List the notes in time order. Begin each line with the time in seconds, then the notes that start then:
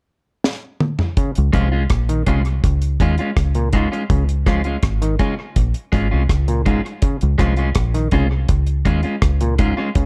0.44 snare
0.80 mid tom
0.99 floor tom
1.17 C#3, kick, closed hi-hat
1.35 C#2, closed hi-hat
1.53 C2 F3 G#3 C#4 F4, kick, closed hi-hat
1.72 G#3 C#4 F4
1.90 A#1, kick, cross-stick, closed hi-hat
2.09 D#3, closed hi-hat
2.27 C2 C#3 G#3 C#4 F4, kick, closed hi-hat
2.45 closed hi-hat
2.64 C#2, kick, closed hi-hat
2.82 closed hi-hat
3.00 D#2 G#3 C#4 F4, kick, closed hi-hat
3.18 G#3 C#4 F4, closed hi-hat
3.37 C#2, kick, cross-stick, closed hi-hat
3.55 A#2, closed hi-hat
3.73 G#2 G#3 C#4 F4, kick, closed hi-hat
3.92 G#3 C#4 F4, closed hi-hat
4.10 C#2 C#3, kick, closed hi-hat
4.29 closed hi-hat
4.46 F3 G#3 C#4 F4, kick, cross-stick, closed hi-hat
4.64 G#3 C#4 F4, closed hi-hat
4.83 G#1, kick, cross-stick, closed hi-hat
5.02 D#3, closed hi-hat
5.19 C#3 G#3 C#4 F4, kick, closed hi-hat
5.56 A#1, kick, closed hi-hat
5.74 closed hi-hat
5.92 G#1 G#3 C#4 F4, kick, closed hi-hat
6.11 C2 G#3 C#4 F4
6.29 C#2, kick, cross-stick, closed hi-hat
6.48 A#2, closed hi-hat
6.66 G#2 G#3 C#4 F4, kick, closed hi-hat
6.86 closed hi-hat
7.02 C#3, kick, closed hi-hat
7.21 C#2, closed hi-hat
7.38 C2 F3 G#3 C#4 F4, kick, cross-stick, closed hi-hat
7.56 G#3 C#4 F4, closed hi-hat
7.75 A#1, kick, cross-stick, closed hi-hat
7.94 D#3, closed hi-hat
8.11 C2 C#3 G#3 C#4 F4, kick, closed hi-hat
8.49 C#2, kick, closed hi-hat
8.67 closed hi-hat
8.85 D#2 G#3 C#4 F4, kick, closed hi-hat
9.03 G#3 C#4 F4, closed hi-hat
9.22 C#2, kick, cross-stick, closed hi-hat
9.41 A#2, closed hi-hat
9.59 G#2 G#3 C#4 F4, kick, closed hi-hat
9.77 G#3 C#4 F4
9.95 C#2 C#3, kick, closed hi-hat